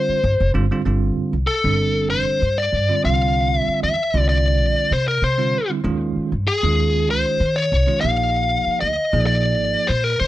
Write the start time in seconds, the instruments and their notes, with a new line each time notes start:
Already playing: tine electric piano D3 G3 C4 F4, lead electric guitar C5
0.09 muted upright bass stroke
0.24 upright bass G1
0.40 upright bass F1
0.54 upright bass G1, tine electric piano D3 G3 C4 F4
0.71 tine electric piano D3 G3 C4 F4
0.86 upright bass G1, tine electric piano D3 G3 C4 F4
1.17 muted upright bass stroke
1.33 upright bass C2
1.47 lead electric guitar A4
1.64 upright bass G1, tine electric piano D3 G3 C4 D4
2.10 upright bass F1, lead electric guitar C5
2.42 upright bass G2
2.58 lead electric guitar D5
2.73 upright bass G2
2.89 tine electric piano D3 G3 C4 F4
3.04 upright bass C2, tine electric piano D3 G3 C4 F4, lead electric guitar F5
3.56 lead electric guitar E5
3.68 muted upright bass stroke
3.83 upright bass E2, lead electric guitar E5
4.14 upright bass C2, tine electric piano D3 G3 C4 F4
4.29 lead electric guitar D5
4.59 upright bass A#1
4.91 upright bass C3, lead electric guitar C5
5.08 lead electric guitar A#4
5.22 upright bass C3, lead electric guitar C5
5.38 tine electric piano D3 G3 C4 F4
5.70 tine electric piano D3 G3 C4 E4
5.84 upright bass D#2, tine electric piano D#3 G#3 C#4 F4
6.16 muted upright bass stroke
6.32 upright bass G2
6.48 lead electric guitar G#4
6.63 upright bass D#2, tine electric piano D#3 G#3 C#4 F4
7.09 upright bass C#2, lead electric guitar C5
7.40 upright bass D#3
7.56 lead electric guitar C#5
7.72 upright bass C2
7.87 tine electric piano D#3 G#3 C#4 F4
8.01 upright bass A#1, tine electric piano F3 A#3 D#4 G4, lead electric guitar F5
8.66 muted upright bass stroke
8.81 upright bass D2, lead electric guitar D#5
9.13 upright bass A#1, tine electric piano F3 A#3 D#4 G#4
9.27 lead electric guitar D5
9.59 upright bass G#1
9.88 upright bass A#2, lead electric guitar C5
10.04 lead electric guitar A#4
10.20 upright bass D3, lead electric guitar C5